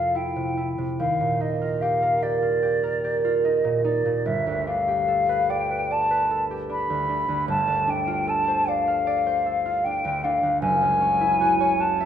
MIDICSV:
0, 0, Header, 1, 3, 480
1, 0, Start_track
1, 0, Tempo, 821918
1, 586, Time_signature, 4, 2, 24, 8
1, 3454, Tempo, 792602
1, 5374, Tempo, 779221
1, 7202, End_track
2, 0, Start_track
2, 0, Title_t, "Flute"
2, 0, Program_c, 0, 73
2, 0, Note_on_c, 0, 77, 57
2, 92, Note_on_c, 0, 79, 51
2, 101, Note_off_c, 0, 77, 0
2, 400, Note_off_c, 0, 79, 0
2, 580, Note_on_c, 0, 77, 51
2, 824, Note_on_c, 0, 75, 52
2, 833, Note_off_c, 0, 77, 0
2, 1057, Note_on_c, 0, 77, 53
2, 1066, Note_off_c, 0, 75, 0
2, 1299, Note_on_c, 0, 74, 57
2, 1307, Note_off_c, 0, 77, 0
2, 2011, Note_on_c, 0, 75, 46
2, 2020, Note_off_c, 0, 74, 0
2, 2239, Note_off_c, 0, 75, 0
2, 2243, Note_on_c, 0, 74, 55
2, 2487, Note_on_c, 0, 76, 48
2, 2496, Note_off_c, 0, 74, 0
2, 2729, Note_on_c, 0, 77, 60
2, 2738, Note_off_c, 0, 76, 0
2, 3208, Note_on_c, 0, 79, 59
2, 3217, Note_off_c, 0, 77, 0
2, 3455, Note_on_c, 0, 81, 61
2, 3464, Note_off_c, 0, 79, 0
2, 3775, Note_off_c, 0, 81, 0
2, 3936, Note_on_c, 0, 83, 60
2, 4386, Note_off_c, 0, 83, 0
2, 4411, Note_on_c, 0, 81, 63
2, 4654, Note_on_c, 0, 79, 58
2, 4663, Note_off_c, 0, 81, 0
2, 4894, Note_on_c, 0, 81, 68
2, 4903, Note_off_c, 0, 79, 0
2, 5133, Note_on_c, 0, 77, 67
2, 5142, Note_off_c, 0, 81, 0
2, 5839, Note_on_c, 0, 79, 65
2, 5848, Note_off_c, 0, 77, 0
2, 6083, Note_on_c, 0, 77, 64
2, 6092, Note_off_c, 0, 79, 0
2, 6311, Note_off_c, 0, 77, 0
2, 6315, Note_on_c, 0, 80, 77
2, 7047, Note_on_c, 0, 81, 74
2, 7056, Note_off_c, 0, 80, 0
2, 7202, Note_off_c, 0, 81, 0
2, 7202, End_track
3, 0, Start_track
3, 0, Title_t, "Harp"
3, 0, Program_c, 1, 46
3, 0, Note_on_c, 1, 41, 35
3, 0, Note_on_c, 1, 48, 28
3, 0, Note_on_c, 1, 64, 28
3, 0, Note_on_c, 1, 65, 29
3, 0, Note_on_c, 1, 69, 32
3, 80, Note_off_c, 1, 64, 0
3, 87, Note_on_c, 1, 64, 30
3, 204, Note_off_c, 1, 48, 0
3, 211, Note_on_c, 1, 48, 28
3, 327, Note_off_c, 1, 64, 0
3, 334, Note_on_c, 1, 64, 28
3, 449, Note_off_c, 1, 48, 0
3, 456, Note_on_c, 1, 48, 29
3, 581, Note_on_c, 1, 39, 36
3, 602, Note_off_c, 1, 48, 0
3, 603, Note_off_c, 1, 64, 0
3, 603, Note_off_c, 1, 69, 0
3, 604, Note_off_c, 1, 41, 0
3, 704, Note_on_c, 1, 46, 28
3, 820, Note_on_c, 1, 63, 29
3, 936, Note_off_c, 1, 65, 0
3, 943, Note_on_c, 1, 65, 28
3, 1063, Note_on_c, 1, 67, 33
3, 1182, Note_on_c, 1, 70, 34
3, 1293, Note_off_c, 1, 67, 0
3, 1300, Note_on_c, 1, 67, 32
3, 1408, Note_off_c, 1, 65, 0
3, 1415, Note_on_c, 1, 65, 27
3, 1527, Note_off_c, 1, 67, 0
3, 1534, Note_on_c, 1, 67, 35
3, 1648, Note_off_c, 1, 70, 0
3, 1655, Note_on_c, 1, 70, 31
3, 1770, Note_off_c, 1, 67, 0
3, 1777, Note_on_c, 1, 67, 32
3, 1889, Note_off_c, 1, 65, 0
3, 1896, Note_on_c, 1, 65, 31
3, 2007, Note_off_c, 1, 63, 0
3, 2014, Note_on_c, 1, 63, 32
3, 2121, Note_off_c, 1, 46, 0
3, 2128, Note_on_c, 1, 46, 32
3, 2238, Note_off_c, 1, 63, 0
3, 2245, Note_on_c, 1, 63, 31
3, 2361, Note_off_c, 1, 46, 0
3, 2368, Note_on_c, 1, 46, 29
3, 2485, Note_on_c, 1, 31, 39
3, 2507, Note_off_c, 1, 63, 0
3, 2508, Note_off_c, 1, 39, 0
3, 2508, Note_off_c, 1, 65, 0
3, 2508, Note_off_c, 1, 70, 0
3, 2509, Note_off_c, 1, 46, 0
3, 2609, Note_on_c, 1, 38, 30
3, 2727, Note_on_c, 1, 62, 31
3, 2842, Note_off_c, 1, 67, 0
3, 2849, Note_on_c, 1, 67, 31
3, 2966, Note_on_c, 1, 69, 35
3, 3089, Note_on_c, 1, 71, 36
3, 3211, Note_on_c, 1, 74, 38
3, 3325, Note_off_c, 1, 71, 0
3, 3332, Note_on_c, 1, 71, 31
3, 3443, Note_off_c, 1, 74, 0
3, 3450, Note_on_c, 1, 74, 39
3, 3563, Note_off_c, 1, 71, 0
3, 3571, Note_on_c, 1, 71, 37
3, 3685, Note_off_c, 1, 69, 0
3, 3692, Note_on_c, 1, 69, 35
3, 3805, Note_off_c, 1, 67, 0
3, 3813, Note_on_c, 1, 67, 33
3, 3919, Note_off_c, 1, 62, 0
3, 3927, Note_on_c, 1, 62, 33
3, 4044, Note_off_c, 1, 38, 0
3, 4051, Note_on_c, 1, 38, 33
3, 4158, Note_off_c, 1, 62, 0
3, 4165, Note_on_c, 1, 62, 34
3, 4277, Note_off_c, 1, 38, 0
3, 4284, Note_on_c, 1, 38, 33
3, 4394, Note_off_c, 1, 31, 0
3, 4402, Note_on_c, 1, 31, 43
3, 4426, Note_off_c, 1, 38, 0
3, 4426, Note_off_c, 1, 71, 0
3, 4427, Note_off_c, 1, 67, 0
3, 4520, Note_on_c, 1, 38, 32
3, 4634, Note_off_c, 1, 62, 0
3, 4641, Note_on_c, 1, 62, 32
3, 4762, Note_on_c, 1, 65, 34
3, 4877, Note_off_c, 1, 69, 0
3, 4884, Note_on_c, 1, 69, 36
3, 5007, Note_on_c, 1, 72, 39
3, 5122, Note_off_c, 1, 74, 0
3, 5129, Note_on_c, 1, 74, 42
3, 5248, Note_on_c, 1, 77, 38
3, 5357, Note_off_c, 1, 74, 0
3, 5364, Note_on_c, 1, 74, 45
3, 5478, Note_off_c, 1, 72, 0
3, 5486, Note_on_c, 1, 72, 38
3, 5597, Note_off_c, 1, 69, 0
3, 5604, Note_on_c, 1, 69, 39
3, 5718, Note_off_c, 1, 65, 0
3, 5726, Note_on_c, 1, 65, 37
3, 5842, Note_off_c, 1, 62, 0
3, 5850, Note_on_c, 1, 62, 38
3, 5960, Note_off_c, 1, 38, 0
3, 5967, Note_on_c, 1, 38, 36
3, 6079, Note_off_c, 1, 62, 0
3, 6086, Note_on_c, 1, 62, 40
3, 6195, Note_off_c, 1, 38, 0
3, 6203, Note_on_c, 1, 38, 37
3, 6319, Note_on_c, 1, 30, 46
3, 6334, Note_off_c, 1, 31, 0
3, 6334, Note_off_c, 1, 74, 0
3, 6335, Note_off_c, 1, 72, 0
3, 6335, Note_off_c, 1, 77, 0
3, 6337, Note_off_c, 1, 65, 0
3, 6338, Note_off_c, 1, 38, 0
3, 6338, Note_off_c, 1, 62, 0
3, 6438, Note_on_c, 1, 37, 37
3, 6559, Note_on_c, 1, 61, 37
3, 6680, Note_on_c, 1, 64, 37
3, 6804, Note_on_c, 1, 66, 43
3, 6926, Note_on_c, 1, 73, 43
3, 7038, Note_off_c, 1, 66, 0
3, 7046, Note_on_c, 1, 66, 41
3, 7172, Note_on_c, 1, 76, 38
3, 7202, Note_off_c, 1, 30, 0
3, 7202, Note_off_c, 1, 37, 0
3, 7202, Note_off_c, 1, 61, 0
3, 7202, Note_off_c, 1, 64, 0
3, 7202, Note_off_c, 1, 66, 0
3, 7202, Note_off_c, 1, 69, 0
3, 7202, Note_off_c, 1, 73, 0
3, 7202, Note_off_c, 1, 76, 0
3, 7202, End_track
0, 0, End_of_file